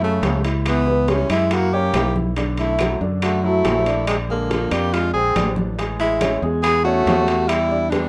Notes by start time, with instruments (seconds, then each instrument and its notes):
Already playing: fingered electric bass F#2
0.01 trombone C#3, grand piano A3 A4, tenor saxophone A3, high conga
0.22 fingered electric bass C#2, high bongo, low bongo, high conga, high timbale, low timbale
0.44 grand piano E4 E5, high bongo, high conga, high timbale
0.66 trombone E3, tenor saxophone B3, high bongo, high conga, high timbale, claves
0.87 grand piano B3 B4, high bongo, high conga
1.08 trombone E3, grand piano G3 G4, tenor saxophone C#4, high bongo, high conga, high timbale, low timbale
1.30 fingered electric bass F#2, trombone G#3, grand piano E4 E5, tenor saxophone E4, high timbale, claves
1.51 trombone A#3, tenor saxophone F#4, high bongo, high conga, high timbale
1.73 trombone A#3, grand piano C#4 C#5, tenor saxophone G4, high bongo, high conga
1.93 fingered electric bass B1, grand piano E4 E5, high bongo, low bongo, high conga, high timbale, low timbale, claves
2.16 high bongo, high conga
2.36 grand piano D3 D4, high bongo, high timbale
2.57 trombone A3, tenor saxophone E4, high bongo, high conga, high timbale
2.79 grand piano F#3 F#4, high bongo, high conga, high timbale, low timbale, claves
3.01 fingered electric bass F#2, grand piano D3 D4, high bongo, high conga
3.22 trombone A3, tenor saxophone F#4, high bongo, high conga, high timbale, claves
3.43 grand piano F#3 F#4, trombone A3, tenor saxophone E4, high conga
3.65 fingered electric bass A#1, high bongo, low bongo, high conga, high timbale, low timbale
3.86 grand piano D4 D5, high bongo, high conga, high timbale
4.07 trombone C3, tenor saxophone G#3, high bongo, high conga, high timbale, claves
4.28 trombone D3, grand piano G#3 G#4, tenor saxophone A#3, high bongo, high conga
4.50 grand piano F3 F4, high bongo, high conga, high timbale, low timbale
4.71 fingered electric bass F2, trombone A#3, grand piano D4 D5, tenor saxophone G4, high timbale, claves
4.93 trombone G#3, tenor saxophone F4, high bongo, high conga, high timbale
5.14 fingered electric bass A#1, grand piano G#3 G#4, trombone C4, tenor saxophone G#4, high bongo, high conga
5.36 fingered electric bass A1, grand piano D4 D5, high bongo, low bongo, high conga, high timbale, low timbale, claves
5.56 high bongo, high conga
5.78 grand piano G#3 G#4, high bongo, high conga, high timbale
5.99 trombone G#3, tenor saxophone E4, high bongo, high conga, high timbale
6.21 grand piano C#4 C#5, high bongo, high conga, high timbale, low timbale, claves
6.42 fingered electric bass E2, grand piano G#3 G#4, high bongo, high conga
6.62 trombone B3, tenor saxophone G#4, high bongo, high conga, high timbale, claves
6.84 trombone A3, grand piano C#4 C#5, tenor saxophone F#4, high conga
7.06 fingered electric bass E2, high bongo, low bongo, high conga, high timbale, low timbale
7.28 grand piano G4 G5, high bongo, high conga, high timbale
7.47 trombone G3, tenor saxophone E4, high bongo, high conga, high timbale, claves
7.71 grand piano D4 D5, high bongo, high conga
7.90 trombone G3, grand piano B3 B4, tenor saxophone D4, high bongo, high conga, high timbale, low timbale